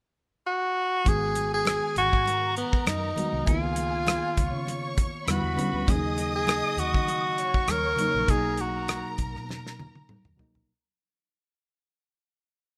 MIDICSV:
0, 0, Header, 1, 7, 480
1, 0, Start_track
1, 0, Tempo, 601805
1, 848, Time_signature, 4, 2, 24, 8
1, 10193, End_track
2, 0, Start_track
2, 0, Title_t, "Violin section"
2, 0, Program_c, 0, 48
2, 852, Note_on_c, 0, 68, 73
2, 854, Note_on_c, 0, 80, 83
2, 1793, Note_off_c, 0, 68, 0
2, 1794, Note_off_c, 0, 80, 0
2, 1811, Note_on_c, 0, 70, 70
2, 1815, Note_on_c, 0, 82, 77
2, 2753, Note_off_c, 0, 70, 0
2, 2755, Note_off_c, 0, 82, 0
2, 2770, Note_on_c, 0, 80, 78
2, 2772, Note_on_c, 0, 68, 71
2, 3477, Note_off_c, 0, 80, 0
2, 3478, Note_off_c, 0, 68, 0
2, 3485, Note_on_c, 0, 73, 68
2, 3490, Note_on_c, 0, 85, 79
2, 4195, Note_off_c, 0, 73, 0
2, 4197, Note_off_c, 0, 85, 0
2, 4207, Note_on_c, 0, 71, 68
2, 4207, Note_on_c, 0, 83, 72
2, 4681, Note_off_c, 0, 71, 0
2, 4681, Note_off_c, 0, 83, 0
2, 4687, Note_on_c, 0, 75, 77
2, 4687, Note_on_c, 0, 87, 83
2, 5866, Note_off_c, 0, 75, 0
2, 5866, Note_off_c, 0, 87, 0
2, 5894, Note_on_c, 0, 73, 68
2, 5894, Note_on_c, 0, 85, 73
2, 6599, Note_off_c, 0, 73, 0
2, 6599, Note_off_c, 0, 85, 0
2, 6613, Note_on_c, 0, 82, 86
2, 6614, Note_on_c, 0, 70, 72
2, 8498, Note_off_c, 0, 82, 0
2, 8499, Note_off_c, 0, 70, 0
2, 10193, End_track
3, 0, Start_track
3, 0, Title_t, "Tenor saxophone"
3, 0, Program_c, 1, 66
3, 372, Note_on_c, 1, 66, 83
3, 863, Note_on_c, 1, 68, 95
3, 875, Note_off_c, 1, 66, 0
3, 1222, Note_off_c, 1, 68, 0
3, 1227, Note_on_c, 1, 68, 89
3, 1549, Note_off_c, 1, 68, 0
3, 1578, Note_on_c, 1, 66, 91
3, 2022, Note_off_c, 1, 66, 0
3, 2053, Note_on_c, 1, 59, 74
3, 2289, Note_on_c, 1, 63, 73
3, 2301, Note_off_c, 1, 59, 0
3, 2772, Note_on_c, 1, 65, 84
3, 2783, Note_off_c, 1, 63, 0
3, 3999, Note_off_c, 1, 65, 0
3, 4228, Note_on_c, 1, 66, 70
3, 4706, Note_on_c, 1, 68, 85
3, 4718, Note_off_c, 1, 66, 0
3, 5062, Note_off_c, 1, 68, 0
3, 5067, Note_on_c, 1, 68, 87
3, 5416, Note_on_c, 1, 66, 82
3, 5428, Note_off_c, 1, 68, 0
3, 6145, Note_on_c, 1, 70, 95
3, 6157, Note_off_c, 1, 66, 0
3, 6624, Note_on_c, 1, 68, 87
3, 6636, Note_off_c, 1, 70, 0
3, 6865, Note_on_c, 1, 66, 73
3, 6877, Note_off_c, 1, 68, 0
3, 7338, Note_off_c, 1, 66, 0
3, 10193, End_track
4, 0, Start_track
4, 0, Title_t, "Reed electric piano"
4, 0, Program_c, 2, 4
4, 833, Note_on_c, 2, 51, 64
4, 844, Note_on_c, 2, 56, 57
4, 854, Note_on_c, 2, 59, 62
4, 861, Note_on_c, 2, 66, 69
4, 976, Control_c, 2, 64, 127
4, 1583, Note_off_c, 2, 51, 0
4, 1589, Note_off_c, 2, 56, 0
4, 1594, Note_off_c, 2, 59, 0
4, 1597, Note_off_c, 2, 66, 0
4, 2516, Note_on_c, 2, 51, 62
4, 2523, Note_on_c, 2, 56, 57
4, 2534, Note_on_c, 2, 59, 60
4, 2545, Note_on_c, 2, 66, 71
4, 2713, Note_off_c, 2, 51, 0
4, 2717, Note_off_c, 2, 56, 0
4, 2722, Note_off_c, 2, 59, 0
4, 2728, Note_off_c, 2, 66, 0
4, 2749, Note_on_c, 2, 51, 66
4, 2757, Note_on_c, 2, 58, 55
4, 2773, Note_on_c, 2, 59, 59
4, 2781, Note_on_c, 2, 65, 68
4, 2782, Control_c, 2, 64, 0
4, 2932, Control_c, 2, 64, 127
4, 3503, Note_off_c, 2, 51, 0
4, 3507, Note_off_c, 2, 58, 0
4, 3515, Note_off_c, 2, 59, 0
4, 3519, Note_off_c, 2, 65, 0
4, 4201, Note_on_c, 2, 50, 66
4, 4207, Note_on_c, 2, 55, 61
4, 4221, Note_on_c, 2, 59, 58
4, 4223, Control_c, 2, 64, 0
4, 4229, Note_on_c, 2, 64, 70
4, 4383, Control_c, 2, 64, 127
4, 4403, Note_off_c, 2, 50, 0
4, 4406, Note_off_c, 2, 55, 0
4, 4413, Note_off_c, 2, 59, 0
4, 4417, Note_off_c, 2, 64, 0
4, 4431, Note_on_c, 2, 50, 65
4, 4439, Note_on_c, 2, 55, 63
4, 4447, Note_on_c, 2, 59, 61
4, 4458, Note_on_c, 2, 61, 74
4, 4632, Note_off_c, 2, 50, 0
4, 4636, Note_off_c, 2, 55, 0
4, 4640, Note_off_c, 2, 59, 0
4, 4645, Note_off_c, 2, 61, 0
4, 4667, Note_on_c, 2, 49, 65
4, 4678, Note_on_c, 2, 54, 64
4, 4689, Note_on_c, 2, 58, 63
4, 4695, Note_on_c, 2, 61, 60
4, 4704, Control_c, 2, 64, 0
4, 4751, Note_off_c, 2, 61, 0
4, 4833, Control_c, 2, 64, 127
4, 5422, Note_off_c, 2, 49, 0
4, 5428, Note_off_c, 2, 54, 0
4, 5433, Note_off_c, 2, 58, 0
4, 6347, Note_on_c, 2, 49, 63
4, 6360, Note_on_c, 2, 54, 60
4, 6372, Note_on_c, 2, 58, 60
4, 6385, Note_on_c, 2, 63, 71
4, 6549, Note_off_c, 2, 49, 0
4, 6556, Note_off_c, 2, 54, 0
4, 6562, Note_off_c, 2, 58, 0
4, 6568, Note_off_c, 2, 63, 0
4, 6585, Note_on_c, 2, 47, 64
4, 6602, Note_on_c, 2, 54, 62
4, 6608, Note_on_c, 2, 58, 58
4, 6622, Note_on_c, 2, 63, 74
4, 6625, Control_c, 2, 64, 0
4, 6766, Control_c, 2, 64, 127
4, 7340, Note_off_c, 2, 47, 0
4, 7348, Note_off_c, 2, 54, 0
4, 7351, Note_off_c, 2, 58, 0
4, 7358, Note_off_c, 2, 63, 0
4, 8267, Note_on_c, 2, 47, 77
4, 8272, Note_on_c, 2, 54, 72
4, 8286, Note_on_c, 2, 58, 68
4, 8296, Note_on_c, 2, 63, 88
4, 8468, Note_off_c, 2, 47, 0
4, 8471, Note_off_c, 2, 54, 0
4, 8478, Note_off_c, 2, 58, 0
4, 8483, Note_off_c, 2, 63, 0
4, 8540, Control_c, 2, 64, 0
4, 10193, End_track
5, 0, Start_track
5, 0, Title_t, "Fingered electric bass"
5, 0, Program_c, 3, 33
5, 850, Note_on_c, 3, 32, 85
5, 1429, Note_off_c, 3, 32, 0
5, 1569, Note_on_c, 3, 32, 74
5, 1675, Note_off_c, 3, 32, 0
5, 1701, Note_on_c, 3, 44, 77
5, 2093, Note_off_c, 3, 44, 0
5, 2292, Note_on_c, 3, 42, 84
5, 2488, Note_off_c, 3, 42, 0
5, 2653, Note_on_c, 3, 36, 72
5, 2746, Note_off_c, 3, 36, 0
5, 2767, Note_on_c, 3, 37, 80
5, 3349, Note_off_c, 3, 37, 0
5, 3489, Note_on_c, 3, 37, 83
5, 3596, Note_off_c, 3, 37, 0
5, 3611, Note_on_c, 3, 49, 84
5, 4008, Note_off_c, 3, 49, 0
5, 4207, Note_on_c, 3, 40, 80
5, 4316, Note_off_c, 3, 40, 0
5, 4329, Note_on_c, 3, 40, 77
5, 4425, Note_off_c, 3, 40, 0
5, 4570, Note_on_c, 3, 38, 78
5, 4666, Note_off_c, 3, 38, 0
5, 4691, Note_on_c, 3, 39, 82
5, 5272, Note_off_c, 3, 39, 0
5, 5398, Note_on_c, 3, 39, 76
5, 5538, Note_on_c, 3, 51, 82
5, 5550, Note_off_c, 3, 39, 0
5, 5932, Note_off_c, 3, 51, 0
5, 6124, Note_on_c, 3, 39, 87
5, 6324, Note_off_c, 3, 39, 0
5, 6494, Note_on_c, 3, 34, 82
5, 6588, Note_off_c, 3, 34, 0
5, 6604, Note_on_c, 3, 35, 81
5, 7187, Note_off_c, 3, 35, 0
5, 7328, Note_on_c, 3, 35, 74
5, 7460, Note_on_c, 3, 47, 79
5, 7472, Note_off_c, 3, 35, 0
5, 7853, Note_off_c, 3, 47, 0
5, 8178, Note_on_c, 3, 39, 73
5, 8269, Note_off_c, 3, 39, 0
5, 8418, Note_on_c, 3, 34, 78
5, 8509, Note_off_c, 3, 34, 0
5, 10193, End_track
6, 0, Start_track
6, 0, Title_t, "Muted fingered electric bass strokes"
6, 8052, Note_on_c, 9, 29, 40
6, 8132, Note_off_c, 9, 29, 0
6, 10193, End_track
7, 0, Start_track
7, 0, Title_t, "Drums"
7, 840, Note_on_c, 9, 62, 41
7, 847, Note_on_c, 9, 36, 92
7, 849, Note_on_c, 9, 42, 69
7, 920, Note_off_c, 9, 62, 0
7, 927, Note_off_c, 9, 36, 0
7, 929, Note_off_c, 9, 42, 0
7, 1080, Note_on_c, 9, 42, 66
7, 1081, Note_on_c, 9, 62, 40
7, 1160, Note_off_c, 9, 42, 0
7, 1161, Note_off_c, 9, 62, 0
7, 1318, Note_on_c, 9, 63, 67
7, 1328, Note_on_c, 9, 42, 74
7, 1335, Note_on_c, 9, 37, 103
7, 1398, Note_off_c, 9, 63, 0
7, 1408, Note_off_c, 9, 42, 0
7, 1415, Note_off_c, 9, 37, 0
7, 1565, Note_on_c, 9, 42, 61
7, 1565, Note_on_c, 9, 62, 25
7, 1565, Note_on_c, 9, 64, 52
7, 1644, Note_off_c, 9, 62, 0
7, 1644, Note_off_c, 9, 64, 0
7, 1645, Note_off_c, 9, 42, 0
7, 1700, Note_on_c, 9, 36, 75
7, 1705, Note_on_c, 9, 37, 30
7, 1780, Note_off_c, 9, 36, 0
7, 1785, Note_off_c, 9, 37, 0
7, 1800, Note_on_c, 9, 62, 43
7, 1814, Note_on_c, 9, 42, 68
7, 1880, Note_off_c, 9, 62, 0
7, 1894, Note_off_c, 9, 42, 0
7, 2046, Note_on_c, 9, 42, 59
7, 2126, Note_off_c, 9, 42, 0
7, 2178, Note_on_c, 9, 36, 80
7, 2258, Note_off_c, 9, 36, 0
7, 2283, Note_on_c, 9, 63, 64
7, 2286, Note_on_c, 9, 42, 83
7, 2291, Note_on_c, 9, 37, 88
7, 2363, Note_off_c, 9, 63, 0
7, 2366, Note_off_c, 9, 42, 0
7, 2371, Note_off_c, 9, 37, 0
7, 2520, Note_on_c, 9, 63, 62
7, 2533, Note_on_c, 9, 42, 66
7, 2599, Note_off_c, 9, 63, 0
7, 2613, Note_off_c, 9, 42, 0
7, 2762, Note_on_c, 9, 62, 40
7, 2770, Note_on_c, 9, 42, 69
7, 2771, Note_on_c, 9, 36, 92
7, 2842, Note_off_c, 9, 62, 0
7, 2850, Note_off_c, 9, 36, 0
7, 2850, Note_off_c, 9, 42, 0
7, 2999, Note_on_c, 9, 62, 41
7, 3000, Note_on_c, 9, 42, 65
7, 3079, Note_off_c, 9, 62, 0
7, 3080, Note_off_c, 9, 42, 0
7, 3243, Note_on_c, 9, 63, 68
7, 3249, Note_on_c, 9, 42, 76
7, 3256, Note_on_c, 9, 37, 106
7, 3323, Note_off_c, 9, 63, 0
7, 3329, Note_off_c, 9, 42, 0
7, 3336, Note_off_c, 9, 37, 0
7, 3483, Note_on_c, 9, 62, 27
7, 3488, Note_on_c, 9, 42, 64
7, 3490, Note_on_c, 9, 36, 78
7, 3563, Note_off_c, 9, 62, 0
7, 3568, Note_off_c, 9, 42, 0
7, 3570, Note_off_c, 9, 36, 0
7, 3724, Note_on_c, 9, 62, 41
7, 3735, Note_on_c, 9, 42, 69
7, 3804, Note_off_c, 9, 62, 0
7, 3815, Note_off_c, 9, 42, 0
7, 3964, Note_on_c, 9, 64, 64
7, 3969, Note_on_c, 9, 42, 64
7, 3970, Note_on_c, 9, 36, 85
7, 4044, Note_off_c, 9, 64, 0
7, 4048, Note_off_c, 9, 42, 0
7, 4050, Note_off_c, 9, 36, 0
7, 4207, Note_on_c, 9, 63, 66
7, 4208, Note_on_c, 9, 42, 82
7, 4214, Note_on_c, 9, 37, 84
7, 4287, Note_off_c, 9, 63, 0
7, 4288, Note_off_c, 9, 42, 0
7, 4293, Note_off_c, 9, 37, 0
7, 4446, Note_on_c, 9, 63, 62
7, 4456, Note_on_c, 9, 42, 66
7, 4526, Note_off_c, 9, 63, 0
7, 4535, Note_off_c, 9, 42, 0
7, 4685, Note_on_c, 9, 62, 41
7, 4690, Note_on_c, 9, 36, 95
7, 4691, Note_on_c, 9, 42, 76
7, 4765, Note_off_c, 9, 62, 0
7, 4770, Note_off_c, 9, 36, 0
7, 4771, Note_off_c, 9, 42, 0
7, 4919, Note_on_c, 9, 62, 46
7, 4928, Note_on_c, 9, 42, 68
7, 4999, Note_off_c, 9, 62, 0
7, 5008, Note_off_c, 9, 42, 0
7, 5159, Note_on_c, 9, 63, 73
7, 5170, Note_on_c, 9, 42, 73
7, 5177, Note_on_c, 9, 37, 102
7, 5239, Note_off_c, 9, 63, 0
7, 5250, Note_off_c, 9, 42, 0
7, 5256, Note_off_c, 9, 37, 0
7, 5408, Note_on_c, 9, 62, 25
7, 5408, Note_on_c, 9, 64, 57
7, 5409, Note_on_c, 9, 42, 64
7, 5488, Note_off_c, 9, 42, 0
7, 5488, Note_off_c, 9, 62, 0
7, 5488, Note_off_c, 9, 64, 0
7, 5539, Note_on_c, 9, 36, 77
7, 5619, Note_off_c, 9, 36, 0
7, 5643, Note_on_c, 9, 62, 41
7, 5650, Note_on_c, 9, 42, 67
7, 5723, Note_off_c, 9, 62, 0
7, 5730, Note_off_c, 9, 42, 0
7, 5887, Note_on_c, 9, 42, 63
7, 5967, Note_off_c, 9, 42, 0
7, 6016, Note_on_c, 9, 36, 76
7, 6096, Note_off_c, 9, 36, 0
7, 6123, Note_on_c, 9, 42, 86
7, 6123, Note_on_c, 9, 63, 64
7, 6128, Note_on_c, 9, 37, 83
7, 6203, Note_off_c, 9, 42, 0
7, 6203, Note_off_c, 9, 63, 0
7, 6208, Note_off_c, 9, 37, 0
7, 6362, Note_on_c, 9, 63, 63
7, 6369, Note_on_c, 9, 42, 64
7, 6442, Note_off_c, 9, 63, 0
7, 6449, Note_off_c, 9, 42, 0
7, 6606, Note_on_c, 9, 42, 70
7, 6608, Note_on_c, 9, 36, 93
7, 6610, Note_on_c, 9, 62, 40
7, 6686, Note_off_c, 9, 42, 0
7, 6687, Note_off_c, 9, 36, 0
7, 6690, Note_off_c, 9, 62, 0
7, 6840, Note_on_c, 9, 42, 67
7, 6848, Note_on_c, 9, 62, 44
7, 6919, Note_off_c, 9, 42, 0
7, 6928, Note_off_c, 9, 62, 0
7, 7085, Note_on_c, 9, 42, 76
7, 7090, Note_on_c, 9, 63, 67
7, 7092, Note_on_c, 9, 37, 104
7, 7165, Note_off_c, 9, 42, 0
7, 7170, Note_off_c, 9, 63, 0
7, 7171, Note_off_c, 9, 37, 0
7, 7322, Note_on_c, 9, 42, 67
7, 7327, Note_on_c, 9, 36, 75
7, 7334, Note_on_c, 9, 64, 55
7, 7402, Note_off_c, 9, 42, 0
7, 7407, Note_off_c, 9, 36, 0
7, 7414, Note_off_c, 9, 64, 0
7, 7468, Note_on_c, 9, 37, 32
7, 7548, Note_off_c, 9, 37, 0
7, 7570, Note_on_c, 9, 62, 44
7, 7570, Note_on_c, 9, 64, 59
7, 7581, Note_on_c, 9, 38, 47
7, 7650, Note_off_c, 9, 62, 0
7, 7650, Note_off_c, 9, 64, 0
7, 7661, Note_off_c, 9, 38, 0
7, 7709, Note_on_c, 9, 38, 44
7, 7789, Note_off_c, 9, 38, 0
7, 7812, Note_on_c, 9, 48, 62
7, 7816, Note_on_c, 9, 64, 69
7, 7892, Note_off_c, 9, 48, 0
7, 7896, Note_off_c, 9, 64, 0
7, 7940, Note_on_c, 9, 48, 57
7, 8020, Note_off_c, 9, 48, 0
7, 8048, Note_on_c, 9, 47, 69
7, 8053, Note_on_c, 9, 63, 67
7, 8127, Note_off_c, 9, 47, 0
7, 8133, Note_off_c, 9, 63, 0
7, 8175, Note_on_c, 9, 45, 63
7, 8255, Note_off_c, 9, 45, 0
7, 8289, Note_on_c, 9, 43, 77
7, 8295, Note_on_c, 9, 63, 62
7, 8369, Note_off_c, 9, 43, 0
7, 8375, Note_off_c, 9, 63, 0
7, 8416, Note_on_c, 9, 43, 76
7, 8496, Note_off_c, 9, 43, 0
7, 10193, End_track
0, 0, End_of_file